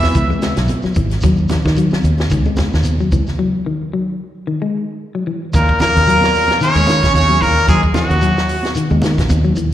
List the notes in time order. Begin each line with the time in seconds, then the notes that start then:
Already playing: E2 E3 E4 E5
0.03 kick, snare, high conga, low conga, shekere
0.14 C#2 E3, kick, closed hi-hat, shekere
0.30 G#3, high conga, shekere
0.42 snare, closed hi-hat, high conga, shekere
0.56 B1, snare, closed hi-hat, shekere
0.68 closed hi-hat, high conga, shekere
0.82 F#3, muted fingered electric bass stroke, snare, shekere
0.94 G#1 E3, kick, closed hi-hat, shekere
1.09 snare, closed hi-hat, shekere
1.21 D#2 F#3, kick, snare, closed hi-hat, low conga, shekere
1.36 shekere
1.48 D#3, snare, closed hi-hat, high conga, low conga, shekere
1.63 D#3, kick, snare, shekere
1.76 F#3, closed hi-hat, shekere
1.90 muted fingered electric bass stroke, snare, high conga, shekere
2.04 D#2, closed hi-hat, shekere
2.18 snare, high conga, shekere
2.30 C#2 D#3, kick, closed hi-hat, shekere
2.45 G#3, high conga, shekere
2.57 kick, snare, closed hi-hat, high conga, shekere
2.73 D#2, snare, shekere
2.83 closed hi-hat, high conga, shekere
2.99 F#3, shekere
3.12 C#2 E3, kick, closed hi-hat, high conga, shekere
3.27 snare, shekere
3.39 F#3
3.66 D#3
3.93 F#3
4.47 D#3
4.62 G#3
5.15 F#3
5.27 E3
5.53 D#2 A#2 A#3 A#4, muted clean electric guitar stroke, kick, closed hi-hat, low conga, shekere
5.69 kick, shekere
5.80 A#2 E3 A#3 A#4, muted fingered electric bass stroke, snare, closed hi-hat, high conga, low conga, shekere
5.95 D#2, snare, closed hi-hat, shekere
6.06 F#3, closed hi-hat, shekere
6.21 snare, high conga, shekere
6.34 open hi-hat, shekere
6.48 snare, closed hi-hat, high conga, low conga, shekere
6.61 C#3 D#3 C#4 C#5, closed hi-hat, shekere
6.75 D#2 G#3, shekere
6.87 D#3, snare, closed hi-hat, high conga, shekere
7.03 A#1, kick, snare, closed hi-hat, shekere
7.13 D#2 C#3 C#4 C#5, closed hi-hat, high conga, shekere
7.29 F#3, shekere
7.41 A#2 E3 A#3 A#4, kick, open hi-hat, shekere
7.56 shekere
7.67 D#2 G#2 F#3 G#4, kick, closed hi-hat, low conga, shekere
7.71 G#3
7.83 kick, shekere
7.94 F#2 E3 F#3 F#4, muted fingered electric bass stroke, snare, closed hi-hat, high conga, low conga, shekere
8.09 D#2, closed hi-hat, shekere
8.21 F#3, closed hi-hat, shekere
8.37 snare, shekere
8.49 open hi-hat, shekere
8.63 snare, closed hi-hat, high conga, shekere
8.75 D#3, closed hi-hat, shekere
8.90 D#2 G#3, high conga, shekere
9.02 D#3, snare, closed hi-hat, high conga, shekere
9.17 A#1, kick, snare, closed hi-hat, shekere
9.29 D#2, kick, closed hi-hat, high conga, shekere
9.44 F#3, shekere
9.56 E3, closed hi-hat, shekere
9.71 shekere